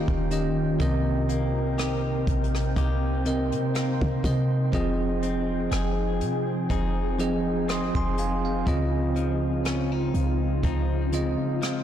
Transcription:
0.00 0.31 D#3 medium
0.00 0.76 D#3 medium
0.00 0.80 D#3 medium
0.00 0.76 A#3 medium
0.00 1.29 A#3 medium
0.00 0.31 C#4 medium
0.00 0.76 C#4 medium
0.00 0.91 C#4 medium
0.00 0.76 F4 medium
0.00 0.32 G4 medium
0.00 1.78 G4 medium
0.00 0.33 D#5 medium
0.00 8.63 G5 medium
0.08 0.77 D#1 loud
0.08 kick medium
0.31 0.65 D#3 medium
0.31 0.65 C#4 medium
0.31 0.66 G4 medium
0.31 0.66 D#5 medium
0.31 closed hi-hat medium
0.80 2.23 C2 loud
0.80 2.13 C3 medium
0.80 4.69 C3 medium
0.80 4.73 C3 medium
0.80 4.69 C4 medium
0.80 2.14 C4 medium
0.80 11.83 D#4 medium
0.80 2.75 A#4 medium
0.80 2.14 A#4 medium
0.80 2.14 D#5 medium
0.80 kick loud
0.80 closed hi-hat medium
1.29 2.75 A#3 medium
1.29 closed hi-hat medium
1.78 2.77 G4 medium
1.78 cross-stick loud
1.78 closed hi-hat medium
2.27 2.75 A#1 loud
2.27 kick loud
2.27 closed hi-hat medium
2.44 closed hi-hat soft
2.55 cross-stick medium
2.60 closed hi-hat soft
2.76 3.54 C2 loud
2.76 3.73 A#3 medium
2.76 6.27 D#4 medium
2.76 4.84 G4 medium
2.76 4.71 C5 medium
2.76 kick medium
2.76 closed hi-hat medium
3.25 3.93 C3 medium
3.25 3.93 C4 medium
3.25 3.94 A#4 medium
3.25 3.94 D#5 medium
3.25 closed hi-hat medium
3.52 3.99 C3 medium
3.52 closed hi-hat medium
3.75 4.84 A#3 medium
3.75 cross-stick loud
3.75 closed hi-hat medium
4.01 4.23 C3 loud
4.01 kick medium
4.23 4.58 C3 medium
4.23 4.71 C3 loud
4.23 4.59 C4 medium
4.23 4.59 A#4 medium
4.23 4.59 D#5 medium
4.23 kick medium
4.23 closed hi-hat medium
4.72 5.68 F1 loud
4.72 6.06 F3 medium
4.72 8.63 F3 medium
4.72 8.67 F3 medium
4.72 8.63 C4 medium
4.72 6.07 C4 medium
4.72 8.63 G#4 medium
4.72 6.07 G#4 medium
4.72 6.07 D#5 medium
4.72 kick loud
4.72 closed hi-hat medium
5.23 6.70 C4 medium
5.23 closed hi-hat medium
5.71 6.22 F1 loud
5.71 6.71 G#4 medium
5.71 cross-stick loud
5.71 closed hi-hat medium
6.21 6.68 C3 medium
6.21 closed hi-hat medium
6.70 7.91 F1 loud
6.70 7.68 C4 medium
6.70 9.19 D#4 medium
6.70 10.21 G#4 medium
6.70 kick medium
6.70 closed hi-hat medium
7.19 7.86 F3 medium
7.19 7.87 C4 medium
7.19 7.87 G#4 medium
7.19 7.87 D#5 medium
7.19 closed hi-hat medium
7.68 9.68 C4 medium
7.68 7.94 C6 medium
7.68 7.94 D#6 medium
7.68 cross-stick loud
7.68 closed hi-hat medium
7.95 8.64 F1 loud
7.95 8.17 G#5 medium
7.95 8.17 C6 medium
7.95 kick medium
8.18 8.44 F5 medium
8.18 8.43 G#5 medium
8.18 closed hi-hat medium
8.45 8.91 F5 medium
8.66 10.10 C#2 loud
8.66 10.00 C#3 medium
8.66 11.83 C#3 medium
8.66 11.83 G#3 medium
8.66 11.83 C4 medium
8.66 10.00 C4 medium
8.66 11.83 F4 medium
8.66 10.01 F4 medium
8.66 10.01 D#5 loud
8.66 kick loud
8.66 closed hi-hat medium
9.16 10.62 F3 medium
9.16 closed hi-hat medium
9.65 9.92 C#4 medium
9.65 cross-stick loud
9.65 closed hi-hat medium
9.92 10.64 D#4 medium
10.14 10.61 C#2 medium
10.14 closed hi-hat medium
10.63 11.36 C#2 loud
10.63 11.61 F3 medium
10.63 11.83 C4 medium
10.63 11.83 D#4 medium
10.63 kick loud
10.63 closed hi-hat medium
11.12 11.80 C#3 medium
11.12 11.80 C4 medium
11.12 11.81 F4 medium
11.12 11.81 D#5 medium
11.12 closed hi-hat medium
11.62 11.83 F3 medium
11.62 cross-stick loud
11.62 closed hi-hat medium

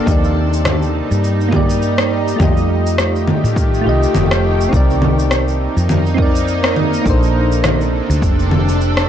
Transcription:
0.03 1.01 D#2 loud
0.03 1.47 A#3 medium
0.03 1.49 D#4 medium
0.03 2.38 D#4 medium
0.03 kick loud
0.07 2.38 G3 medium
0.07 1.50 G4 medium
0.07 shaker medium
0.11 1.52 D5 medium
0.24 shaker soft
0.53 shaker medium
0.65 cross-stick medium
0.65 low conga medium
0.65 shaker medium
0.82 shaker soft
1.11 2.32 G2 loud
1.11 shaker medium
1.24 shaker medium
1.41 shaker soft
1.49 2.35 A#3 medium
1.49 2.36 D#4 medium
1.49 kick loud
1.49 low conga medium
1.54 2.37 G4 medium
1.54 2.39 D5 loud
1.70 shaker medium
1.82 shaker medium
1.98 cross-stick medium
1.98 shaker soft
2.28 shaker medium
2.36 3.34 F2 loud
2.36 3.80 A3 medium
2.36 4.71 A3 medium
2.36 3.82 F4 medium
2.36 4.71 G4 medium
2.36 kick loud
2.36 low conga medium
2.40 4.71 D#3 medium
2.40 3.83 G4 medium
2.40 3.84 D#5 medium
2.40 shaker medium
2.57 shaker soft
2.86 shaker medium
2.98 cross-stick medium
2.98 shaker medium
3.16 shaker soft
3.27 low conga medium
3.44 3.87 A2 loud
3.44 shaker medium
3.56 kick loud
3.56 shaker medium
3.74 shaker soft
3.81 4.68 A3 medium
3.81 4.69 F4 medium
3.86 4.05 C2 medium
3.86 4.70 G4 medium
3.86 4.72 D#5 loud
4.03 shaker medium
4.15 4.65 F1 medium
4.15 low conga medium
4.15 shaker medium
4.31 cross-stick medium
4.31 shaker soft
4.61 shaker medium
4.69 5.66 C2 loud
4.69 6.13 C4 medium
4.69 6.15 D#4 medium
4.69 kick loud
4.73 7.04 A#3 medium
4.73 7.04 D#4 medium
4.73 6.16 A#4 medium
4.73 6.17 D5 medium
4.73 shaker medium
4.90 shaker soft
5.02 low conga medium
5.19 shaker medium
5.31 cross-stick medium
5.31 shaker medium
5.48 shaker soft
5.77 6.98 F2 loud
5.77 shaker medium
5.89 low conga medium
5.89 shaker medium
6.06 shaker soft
6.14 7.01 C4 medium
6.14 7.02 D#4 medium
6.14 kick loud
6.19 7.03 A#4 medium
6.19 7.05 D5 loud
6.36 shaker medium
6.48 shaker medium
6.64 cross-stick medium
6.64 shaker soft
6.76 low conga medium
6.94 shaker medium
7.02 8.46 A#3 medium
7.02 8.48 D4 medium
7.02 kick loud
7.06 8.00 A#1 loud
7.06 9.09 C3 medium
7.06 9.09 D4 medium
7.06 9.09 A4 medium
7.06 8.49 A4 medium
7.06 8.50 C5 medium
7.06 shaker medium
7.23 shaker soft
7.52 shaker medium
7.64 cross-stick medium
7.64 low conga medium
7.64 shaker medium
7.81 shaker soft
8.10 8.22 D2 loud
8.10 shaker medium
8.22 9.09 F1 loud
8.22 kick loud
8.22 shaker medium
8.39 shaker soft
8.51 low conga medium
8.69 shaker medium
8.81 shaker medium
8.97 cross-stick medium
8.97 shaker soft

